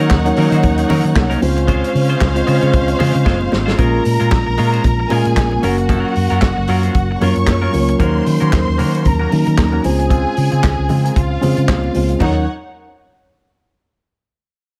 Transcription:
Already playing: D#3 F#3 A#3 C#4 D#4 A#4 C#5 F#5
0.00 F#3 C#4
0.10 D#2, kick, snare, clap, high conga
0.25 F#3 A#3 C#4 D#4 A#4, muted clean electric guitar stroke, closed hi-hat
0.36 D#3 F#3 A#3 C#4 D#4 A#4, open hi-hat
0.52 D#3 F#3 C#4 D#4 C5, closed hi-hat
0.63 D#2, kick, closed hi-hat, low conga
0.78 muted clean electric guitar stroke, closed hi-hat
0.89 D#3 F#3 C#4 D#4 A#4, open hi-hat, muted conga, low conga
1.04 D#3, muted clean electric guitar stroke, closed hi-hat
1.15 C2, muted clean electric guitar stroke, kick, snare, clap, high conga
1.30 F#3 C#4 D#4 A#4, closed hi-hat, high conga
1.41 C#2 G#3 C4 C#4 F4 C5 F5, muted clean electric guitar stroke, open hi-hat, high conga
1.57 muted clean electric guitar stroke, closed hi-hat
1.67 G#3 C#4 F4 C5, kick, closed hi-hat, muted conga
1.84 closed hi-hat
1.94 C#3, muted clean electric guitar stroke, open hi-hat
2.09 G#3 C#4 F4 C5, closed hi-hat
2.21 C#2, kick, snare, clap, high conga
2.34 G#3 C4 C#4 F4 D#5, muted clean electric guitar stroke, closed hi-hat
2.47 C#3 G#3 C4 C#4 F4 C5, open hi-hat
2.62 C#3 G#3 C#4 F4 C#5, closed hi-hat
2.73 C#2, kick, closed hi-hat
2.88 muted clean electric guitar stroke, closed hi-hat
2.99 C#3 G#3 C#4 F4 C5, open hi-hat, muted conga, low conga
3.14 C#3, muted clean electric guitar stroke, closed hi-hat
3.25 F#1 G#3 C#4 F4 C5, kick, snare, high conga
3.39 muted clean electric guitar stroke, high conga
3.51 G#1, muted clean electric guitar stroke, snare, high conga
3.66 G#3 C#4 F4 C5, snare
3.78 A#1 G#3 A#3 C#4 F4 A#4 A#5, kick, closed hi-hat, muted conga
4.05 A#2, open hi-hat
4.20 A#2 G#3 C#4 F4 A#4, closed hi-hat
4.31 A#1, kick, snare, clap, closed hi-hat, high conga
4.46 A#1, muted clean electric guitar stroke
4.58 A#2 G#3 C#4 F4 A#4, open hi-hat
4.73 G#3 C#4 F4 C5, closed hi-hat
4.84 A#1, kick, closed hi-hat, muted conga, low conga
5.00 muted clean electric guitar stroke
5.09 A#2 G#3 A#3 C#4 F4 G#4 A#4 G#5, open hi-hat, muted conga
5.25 A#2, muted clean electric guitar stroke, closed hi-hat
5.36 A#1, muted clean electric guitar stroke, kick, snare, clap, closed hi-hat, high conga
5.51 muted clean electric guitar stroke, high conga
5.62 F#1 F#3 A#3 C#4 F4 F#4 A#4 F#5, open hi-hat, high conga
5.78 muted clean electric guitar stroke, closed hi-hat
5.89 F#3 C#4 F4 A#4, kick, closed hi-hat, muted conga
6.15 F#2, muted clean electric guitar stroke, open hi-hat
6.30 F#2 F#3 C#4 F4 A#4, closed hi-hat
6.42 F#1, kick, snare, clap, closed hi-hat, high conga
6.57 F#1, muted clean electric guitar stroke
6.67 F#2 F#3 C#4 F4 A#4, open hi-hat
6.83 F#3 C#4 F4 C5, closed hi-hat
6.94 F#1, kick, closed hi-hat
7.11 muted clean electric guitar stroke
7.20 F#2 F#3 A#3 C#4 F4 A#4 C#5 C#6, open hi-hat, muted conga, low conga
7.36 F#2, muted clean electric guitar stroke, closed hi-hat
7.47 F#2, muted clean electric guitar stroke, kick, snare, clap, closed hi-hat, high conga
7.62 F#3 C#4 F4 A#4, high conga
7.73 C#2 F#3 A#3 C#4 F4 A#4, open hi-hat, high conga
7.88 muted clean electric guitar stroke, closed hi-hat
7.98 D#2 F#3 A#3 C#4 D#4 F#4 A#4 C5 C6, kick, closed hi-hat, muted conga
8.26 D#3, muted clean electric guitar stroke, open hi-hat
8.40 D#3 A#3 C#4 F#4 A#4, closed hi-hat
8.52 D#2, kick, snare, clap, closed hi-hat, high conga
8.67 D#2, muted clean electric guitar stroke
8.78 D#3 A#3 C#4 F#4 A#4, open hi-hat
8.93 A#3 C#4 F#4 C5, closed hi-hat
9.05 D#2 A#4 A#5, muted clean electric guitar stroke, kick, closed hi-hat, muted conga, low conga
9.19 A#3 C#4 F#4 A#4
9.31 D#3 F#3 A#3 C#4 D#4 A#4, open hi-hat, muted conga
9.46 D#3, muted clean electric guitar stroke, closed hi-hat
9.58 D#2, muted clean electric guitar stroke, kick, snare, clap, closed hi-hat, high conga
9.72 A#3 C#4 F#4 A#4, high conga
9.83 C#2 G#3 C4 C#4 F4 G#4 C5 G#5, muted clean electric guitar stroke, open hi-hat, high conga
9.99 muted clean electric guitar stroke, closed hi-hat
10.10 G#3 C4 F4 G#4, kick, closed hi-hat, muted conga
10.37 C#3, open hi-hat
10.51 C#3 G#3 C4 F4 G#4, closed hi-hat
10.63 C#2, kick, snare, clap, closed hi-hat, high conga
10.78 C#2, muted clean electric guitar stroke
10.89 C#3 G#3 C4 F4 G#4, open hi-hat, low conga
11.04 G#3 C4 F4 A#4, closed hi-hat
11.16 C#2 F4 F5, kick, closed hi-hat, muted conga
11.30 muted clean electric guitar stroke
11.41 C#3 G#3 C4 C#4 F4 G#4 C5, open hi-hat, muted conga, low conga
11.57 C#3, closed hi-hat
11.68 C#2 G#3 C4 F4 G#4, kick, snare, clap, closed hi-hat, high conga
11.83 muted clean electric guitar stroke, high conga
11.94 C#2 G#3 C4 C#4 F4 C5, muted clean electric guitar stroke, open hi-hat, high conga
12.09 G#3 C4 F4 G#4, closed hi-hat
12.20 D#2 F#3 C#4 D#4 A#4 C#5 F#5, kick, floor tom, crash, muted conga

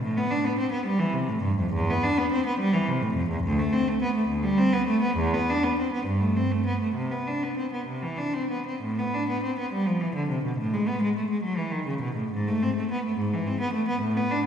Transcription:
0.01 A2
0.17 B3
0.31 D4
0.45 B3
0.59 C4
0.72 B3
0.86 G3
0.98 E3
1.13 C3
1.29 A2
1.43 G2
1.58 F2
1.73 E2
1.90 B3
2.03 D4
2.18 B3
2.32 C4
2.46 B3
2.59 G3
2.73 E3
2.88 C3
3.02 A2
3.14 F2
3.29 E2
3.44 D2
3.59 A3
3.72 C4
3.88 A3
4.02 B3
4.15 A3
4.28 D2
4.43 G3
4.57 C4
4.73 B3
4.87 A3
5.02 B3
5.17 E2
5.34 B3
5.49 D4
5.63 B3
5.79 C4
5.93 B3
6.06 G2
6.20 A3
6.37 C4
6.51 A3
6.66 B3
6.81 A3
6.95 C3
7.11 B3
7.27 D4
7.43 B3
7.57 C4
7.73 B3
7.87 C3
8.02 E3
8.17 D4
8.34 C4
8.50 B3
8.66 C4
8.82 A2
8.99 B3
9.14 D4
9.29 B3
9.43 C4
9.59 B3
9.72 G3
9.86 F3
10.00 E3
10.15 D3
10.29 C3
10.44 B2
10.58 A2
10.73 G#3
10.87 B3
11.02 G#3
11.16 A3
11.30 G#3
11.43 F#3
11.56 E3
11.71 D#3
11.87 C#3
12.02 B2
12.16 A2
12.32 G#2
12.48 A3
12.62 C4
12.76 A3
12.91 B3
13.05 A3
13.18 G#2
13.34 E3
13.47 C4
13.61 B3
13.74 A3
13.88 B3
14.01 A2
14.17 B3
14.31 D4

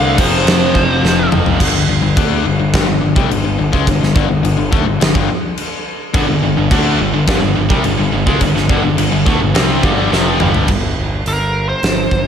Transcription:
Already playing: C2 D3 A3 D4 F5
0.17 F1 F2 C3 F3 C5, kick, crash
0.46 F1, snare, crash
0.75 F1, kick
1.03 F1, snare
1.31 F#1, mid tom
1.46 floor tom
1.60 G1 G2 D3, kick, crash
1.74 G1 G2 D3
1.88 G1 G2 D3
2.02 G1 G2 D3
2.16 D2 D3 A3 D4, kick, crash
2.45 G1 G2 D3
2.59 G1 G2 D3
2.74 G1 G2 D3, kick, snare, crash
2.87 G1 G2 D3
3.01 G1 G2 D3
3.16 C2 C3 G3, kick
3.30 G1 G2 D3, crash
3.44 G1 G2 D3
3.58 G1 G2 D3
3.72 C#2 C#3 G#3, kick
3.87 G1 G2 D3, kick, crash
4.01 G1 G2 D3, snare
4.15 G1 G2 D3, kick
4.29 G1 G2 D3
4.43 G1 G2 D3, crash
4.57 G1 G2 D3
4.71 D2 D3 A3, kick
4.86 G1 G2 D3
5.00 G1 G2 D3, snare, crash
5.14 G1 G2 D3, kick
5.58 crash
6.13 G1 G2 D3, kick, crash
6.28 G1 G2 D3
6.42 G1 G2 D3
6.56 G1 G2 D3
6.71 D2 D3 A3 D4, kick, crash
6.99 G1 G2 D3
7.13 G1 G2 D3
7.27 G1 G2 D3, kick, snare, crash
7.41 G1 G2 D3
7.55 G1 G2 D3
7.69 C2 C3 G3, kick
7.84 G1 G2 D3, crash
7.98 G1 G2 D3
8.12 G1 G2 D3
8.26 C#2 C#3 G#3, kick
8.41 G1 G2 D3, kick, crash
8.55 G1 G2 D3, snare
8.69 G1 G2 D3, kick
8.83 G1 G2 D3
8.97 G1 G2 D3, crash
9.12 G1 G2 D3
9.25 D2 D3 A3, kick
9.40 G1 G2 D3
9.54 C2 C3 G3 C4, snare, crash
9.83 G1 G2 D3 G3, kick
10.11 F1 F2 C3 F3, snare
10.40 G1 G2 D3 G3, mid tom
10.54 floor tom
10.68 G1, kick, crash
10.97 G1
11.26 G1 A#4, open hi-hat
11.69 C5
11.83 G1, snare, open hi-hat
12.11 G1, kick

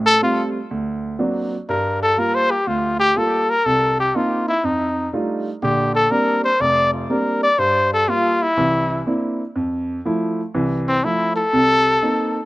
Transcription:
Already playing: A1 A2
0.06 A4
0.22 G3 A3 C4 F4
0.71 D2
1.19 F#3 A#3 C4 D4
1.69 G2 G3 A#4
2.02 A4
2.17 G3 A#3 F4 A#4
2.35 C5
2.51 G4
2.67 D2 F4
3.00 G4
3.16 G3 A#3 F4 A4
3.50 A#4
3.66 C2 A4
4.00 G4
4.15 A#3 C4 D#4 F4
4.48 E4
4.64 F2 D#4
5.13 G3 A3 D4 D#4 F4
5.62 A#1 D3 G4
5.95 A4
6.11 G3 A#3 C4 D4 A#4
6.44 C5
6.60 F1 D5
6.93 F4
7.10 G3 A#3 C4 D4 A#4
7.43 D5
7.58 G2 C5
7.94 A4
8.08 G3 A#3 F4
8.42 E4
8.57 C2 E3
9.06 A#3 C4 D4 E4
9.56 F2
10.05 F3 A3 E4
10.54 C2 E3
10.88 C4
11.04 F3 A3 E4
11.36 A4
11.53 C2 C3
12.02 A#3 C4 D#4

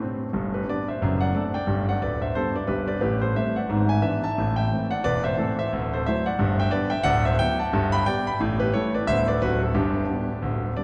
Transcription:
Already playing: G4
0.00 A2 C4
0.33 G1 G2
0.54 G4 B4
0.69 G3 B3 D4 B4 D5
0.88 C5 E5
1.02 F#1 F#2
1.21 D5 F#5
1.34 A3 C4 D4 A4 D5
1.54 D5 G5
1.67 G1 G2
1.89 D5 F#5
2.02 D1 D2 B4 D5
2.22 C5 E5
2.35 G3 B3 D4 A4 C5
2.56 B4 D5
2.67 G1 G2 G4 B4
2.88 B4 D5
3.01 A1 A2 G4 B4
3.21 A4 C5
3.36 G3 A3 C4 C5 E5
3.56 D5 F#5
3.69 G#1 G#2
3.89 E5 G#5
4.02 E3 B3 D4 B4 E5
4.24 E5 A5
4.38 A1 A2
4.56 E5 G5
4.71 E3 A3 C4
4.91 D5 F#5
5.04 E1 E2 B4 D5
5.24 C5 E5
5.37 E3 A3 C4 A4 C5
5.59 C5 E5
5.72 D1 D2
5.93 A4 C5
6.06 F#3 A3 E4 C5 E5
6.26 D5 F#5
6.39 G1 G2
6.60 E5 G5
6.71 G3 B3 D4 B4 D5
6.90 E5 G5
7.03 D1 D2 D5 F#5
7.25 C5 E5
7.39 F#3 B3 E4 E5 G5
7.59 F#5 A5
7.73 G1 G2
7.92 G5 B5
8.06 G3 B3 G4 D5 G5
8.27 G5 B5
8.40 A1 A2
8.60 G4 B4
8.74 G3 A3 E4 A4 C#5
8.95 B4 D5
9.07 D1 D2 G3 B3 D4 C5 E5
9.28 B4 D5
9.42 D1 D2 F#3 C4 D4 F#4 B4
9.62 F#4 A4
9.74 G1 G2 D4 G4
10.09 G3 B3 D4
10.42 D1 D2
10.77 G3 B3 D4 D5

